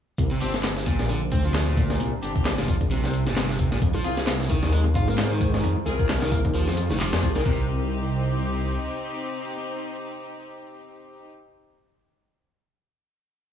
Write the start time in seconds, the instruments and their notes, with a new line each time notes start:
0.18 detuned saw bass C2, analog synth pad C4 D4 G4, kick, closed hi-hat, shaker
0.31 overdriven electric guitar C3
0.41 detuned saw bass G1, string section C4 D4 G4, overdriven electric guitar C4, closed hi-hat, open hi-hat, shaker
0.54 snare, shaker
0.63 snare, clap, closed hi-hat, shaker
0.77 snare
0.86 overdriven electric guitar A#2, kick, closed hi-hat, open hi-hat, shaker
0.99 detuned saw bass A#1, snare, shaker
1.09 overdriven electric guitar D3, closed hi-hat, shaker
1.32 detuned saw bass D2, overdriven electric guitar C4, kick, closed hi-hat, open hi-hat, shaker
1.44 overdriven electric guitar F3, shaker
1.54 overdriven electric guitar F3, snare, clap, closed hi-hat, shaker
1.67 overdriven electric guitar A#2
1.77 kick, closed hi-hat, open hi-hat, shaker
1.90 snare, shaker
2.00 detuned saw bass C2, closed hi-hat, shaker
2.22 detuned saw bass G1, string section C4 D4 G4, closed hi-hat, open hi-hat, shaker
2.36 kick, shaker
2.45 snare, clap, closed hi-hat, shaker
2.58 overdriven electric guitar A#2, snare
2.68 overdriven electric guitar F3, kick, closed hi-hat, open hi-hat, shaker
2.81 detuned saw bass A#1, kick, shaker
2.91 overdriven electric guitar C3, closed hi-hat, shaker
3.04 detuned saw bass C2, snare
3.14 closed hi-hat, open hi-hat, shaker
3.26 detuned saw bass G1, overdriven electric guitar A#2, snare, shaker
3.36 overdriven electric guitar C3, snare, clap, closed hi-hat, shaker
3.49 snare
3.59 kick, closed hi-hat, open hi-hat, shaker
3.72 overdriven electric guitar A#2, snare, shaker
3.81 detuned saw bass F2, analog synth pad C4 F4 G#4, kick, closed hi-hat, shaker
3.94 overdriven electric guitar F3, high bongo, high conga
4.04 detuned saw bass C2, string section C4 F4 G#4, overdriven electric guitar F4, closed hi-hat, open hi-hat, shaker
4.17 snare, shaker
4.27 snare, clap, closed hi-hat, high bongo, high conga, shaker
4.40 snare
4.50 overdriven electric guitar D#3, kick, closed hi-hat, open hi-hat, high bongo, shaker
4.63 detuned saw bass D#2, snare, high conga, shaker
4.73 overdriven electric guitar G#3, closed hi-hat, shaker
4.84 high bongo, low conga
4.95 detuned saw bass G#2, overdriven electric guitar F4, kick, closed hi-hat, open hi-hat, shaker
5.08 overdriven electric guitar A#3, high bongo, high conga, low conga, shaker
5.18 overdriven electric guitar A#3, synth pluck C5, snare, clap, closed hi-hat, shaker
5.31 overdriven electric guitar D#3, synth pluck C5
5.40 kick, closed hi-hat, open hi-hat, high bongo, high conga, shaker
5.54 snare, shaker
5.63 detuned saw bass F2, closed hi-hat, high bongo, shaker
5.76 high conga
5.86 detuned saw bass C2, string section C4 F4 G#4, synth pluck A#4, closed hi-hat, open hi-hat, low conga, shaker
5.99 kick, high bongo, shaker
6.09 snare, clap, closed hi-hat, high conga, shaker
6.22 overdriven electric guitar D#3, snare, high bongo
6.32 overdriven electric guitar A#3, kick, closed hi-hat, open hi-hat, shaker
6.45 detuned saw bass D#2, kick, high conga, shaker
6.54 overdriven electric guitar F3, closed hi-hat, high bongo, shaker
6.68 detuned saw bass F2, snare
6.77 closed hi-hat, open hi-hat, high bongo, shaker
6.90 detuned saw bass F1, overdriven electric guitar D#3, snare, high conga, shaker
7.00 overdriven electric guitar F3, synth pluck G4, clap, open hi-hat, shaker
7.13 detuned saw bass F2, string section C4 F4 G#4, synth pluck G4, snare, high bongo
7.23 detuned saw bass C2, kick, closed hi-hat, open hi-hat, high conga, shaker
7.35 detuned saw bass C2, overdriven electric guitar D#3, string section C4 F4 G#4, synth pluck A#4, snare, high bongo, shaker
7.45 detuned saw bass C2, overdriven electric guitar C3, string section C4 D#4 G4, analog synth pad C4 C5 D#5 G5, synth pluck A#4, kick